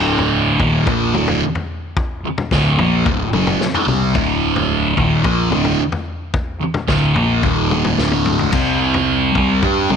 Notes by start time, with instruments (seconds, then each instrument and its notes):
Already playing: fingered electric bass D1, distorted electric guitar D2 A2 D3
0.19 floor tom
0.59 fingered electric bass D#1, distorted electric guitar D#2 A#2 D#3, kick, floor tom
0.87 fingered electric bass A#1, distorted electric guitar A#2 F3 A#3, kick, floor tom
1.14 fingered electric bass D1, distorted electric guitar D2 A2 D3, mid tom
1.28 floor tom, mid tom
1.55 floor tom
1.97 kick, floor tom
2.23 muted fingered electric bass stroke, muted distorted electric guitar stroke
2.38 floor tom, mid tom
2.51 fingered electric bass D1, distorted electric guitar D2 A2 D3, kick, snare
2.78 fingered electric bass A#1, distorted electric guitar A#2 F3 A#3, floor tom
3.06 fingered electric bass D1, distorted electric guitar D2 A2, kick, floor tom
3.33 fingered electric bass F#1, distorted electric guitar F#2 C#3 F#3, mid tom
3.47 floor tom, mid tom
3.60 muted fingered electric bass stroke, muted distorted electric guitar stroke, snare
3.74 floor tom
3.87 fingered electric bass C2, distorted electric guitar C3 G3 C4, mid tom
4.15 fingered electric bass D1, distorted electric guitar D2 A2 D3, kick, floor tom
4.56 floor tom
4.97 fingered electric bass D#1, distorted electric guitar D#2 A#2 D#3, kick, floor tom
5.24 fingered electric bass A#1, distorted electric guitar A#2 F3 A#3, kick, floor tom
5.51 fingered electric bass D1, distorted electric guitar D2 A2 D3, mid tom
5.65 floor tom, mid tom
5.92 floor tom
6.34 kick, floor tom
6.61 muted fingered electric bass stroke, muted distorted electric guitar stroke
6.74 floor tom, mid tom
6.88 fingered electric bass D1, distorted electric guitar D2 A2 D3, kick, snare
7.15 fingered electric bass A#1, distorted electric guitar A#2 F3 A#3, floor tom
7.43 fingered electric bass D#1, distorted electric guitar D#2 A#2 D#3, kick, floor tom
7.71 mid tom
7.85 floor tom, mid tom
7.98 fingered electric bass D1, distorted electric guitar D2 A2 D3, snare
8.12 high tom
8.26 mid tom
8.39 floor tom
8.52 fingered electric bass C2, distorted electric guitar C3 G3 C4, kick, floor tom, crash
8.94 floor tom
9.35 fingered electric bass C2, distorted electric guitar C3 G3 C4, kick, floor tom
9.62 fingered electric bass G2, distorted electric guitar G3 D4 G4, kick, floor tom
9.89 fingered electric bass C2, distorted electric guitar C3 G3 C4, mid tom